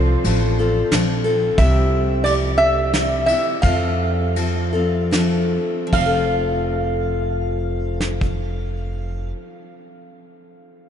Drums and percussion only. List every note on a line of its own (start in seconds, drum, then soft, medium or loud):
0.24 ride medium
0.92 snare medium
0.92 ride medium
1.58 kick loud
1.58 ride soft
2.25 ride medium
2.94 snare medium
2.94 ride medium
3.28 ride medium
3.63 kick medium
3.63 ride soft
4.36 ride medium
5.12 snare medium
5.12 ride medium
5.93 kick medium
5.93 crash medium
8.00 snare soft
8.21 kick medium